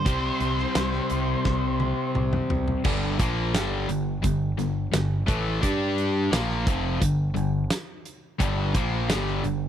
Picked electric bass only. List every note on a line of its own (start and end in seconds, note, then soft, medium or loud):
0.06 0.29 C2 medium
0.41 0.64 C2 medium
0.75 0.99 C2 medium
1.11 1.35 C2 medium
1.45 1.92 C2 medium
2.16 2.39 C2 loud
2.50 2.73 C2 medium
2.85 3.17 G1 loud
3.19 3.52 A#1 loud
3.54 3.86 G1 medium
3.89 4.21 G1 medium
4.24 4.56 G1 medium
4.58 4.90 G1 medium
4.93 5.26 G1 medium
5.28 5.60 A1 medium
5.63 6.28 G2 loud
6.32 6.64 A#1 loud
6.67 6.99 F1 medium
7.01 7.34 G1 medium
7.36 7.68 G1 medium
8.40 8.72 G1 loud
8.75 9.07 A#1 loud
9.09 9.42 G1 loud
9.44 9.69 G1 medium